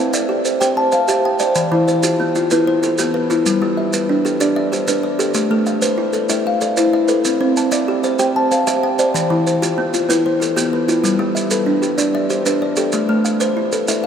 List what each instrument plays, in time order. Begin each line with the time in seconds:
Already playing: kalimba C4 C5
0.00 kalimba A5
0.14 kalimba D5 E5, maracas
0.29 kalimba G4
0.45 kalimba C5, maracas
0.61 kalimba G4 C5 G5, maracas
0.77 kalimba A5
0.92 kalimba C5 F5, maracas
1.08 kalimba G4 E5, maracas
1.25 kalimba G5
1.39 kalimba C5 D5, maracas
1.55 kalimba E3, maracas
1.72 kalimba E3 E4
1.88 kalimba C5, maracas
2.03 kalimba F4 G4, maracas
2.20 kalimba B3
2.35 kalimba E4 F4, maracas
2.51 kalimba B3 E4 B4, maracas
2.67 kalimba C5
2.83 kalimba E4 A4, maracas
2.98 kalimba B3 G4, maracas
3.14 kalimba B4
3.30 kalimba E4 F4, maracas
3.46 kalimba G3, maracas
3.62 kalimba G3 G4
3.77 kalimba E5
3.93 kalimba B4, maracas
4.09 kalimba D4
4.25 kalimba G4 A4, maracas
4.40 kalimba D4 G4 D5, maracas
4.56 kalimba E5
4.72 kalimba G4 C5, maracas
4.88 kalimba D4 B4, maracas
5.03 kalimba D5
5.19 kalimba G4 A4, maracas
5.34 kalimba A3, maracas
5.51 kalimba A3 A4
5.66 kalimba F5, maracas
5.82 kalimba B4 C5, maracas
5.98 kalimba E4
6.13 kalimba A4 B4, maracas
6.29 kalimba E4 A4 E5, maracas
6.47 kalimba F5
6.61 kalimba A4 D5, maracas
6.77 kalimba E4 C5, maracas
6.93 kalimba E5
7.08 kalimba A4 B4, maracas
7.25 kalimba C4, maracas
7.41 kalimba C4 C5
7.57 kalimba A5, maracas
7.72 kalimba D5 E5, maracas
7.88 kalimba G4
8.04 kalimba C5 D5, maracas
8.19 kalimba G4 C5 G5, maracas
8.36 kalimba A5
8.51 kalimba C5 F5, maracas
8.67 kalimba G4 E5, maracas
8.83 kalimba G5
8.99 kalimba C5 D5, maracas
9.14 kalimba E3, maracas
9.30 kalimba E3 E4
9.46 kalimba C5, maracas
9.62 kalimba F4 G4, maracas
9.78 kalimba B3
9.94 kalimba E4 F4, maracas
10.09 kalimba B3 E4 B4, maracas
10.26 kalimba C5
10.40 kalimba E4 A4, maracas
10.56 kalimba B3 G4, maracas
10.73 kalimba B4
10.88 kalimba E4 F4, maracas
11.04 kalimba G3, maracas
11.19 kalimba G3 G4
11.35 kalimba E5, maracas
11.51 kalimba A4 B4, maracas
11.66 kalimba D4
11.82 kalimba G4, maracas
11.98 kalimba D4 G4 D5, maracas
12.15 kalimba E5
12.30 kalimba G4 C5, maracas
12.46 kalimba D4 B4, maracas
12.62 kalimba D5
12.76 kalimba G4 A4, maracas
12.92 kalimba A3, maracas
13.09 kalimba A3 A4
13.25 kalimba F5, maracas
13.40 kalimba B4 C5, maracas
13.57 kalimba E4
13.72 kalimba A4 B4, maracas
13.88 kalimba E4 A4 E5, maracas